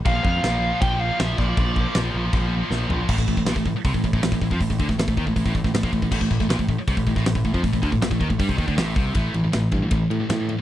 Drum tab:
CC |x---x---x---x---|x---x---x-------|x---------------|----------------|
RD |----------------|----------------|----------------|----------------|
HH |----------------|----------------|----o---o---o---|o---o---o---o---|
SD |----o-------o-o-|----o-------o---|----o-------o---|---oo------oo---|
FT |----------------|--------------o-|----------------|----------------|
BD |o-o-----o-----o-|o-o-----o-------|oooo-oo-oooo-ooo|oooo-ooooooo-ooo|

CC |x---------------|----------------|----------------|
RD |----------------|----------------|x-x-x-x-x-x-x-x-|
HH |----o---o---o---|o---o---o---o---|----------------|
SD |---oo------oo---|----o-------o---|----o-------o---|
FT |----------------|----------------|----------------|
BD |oooo-oo-oooo-ooo|oooo-ooooooo--o-|o-----o-o-------|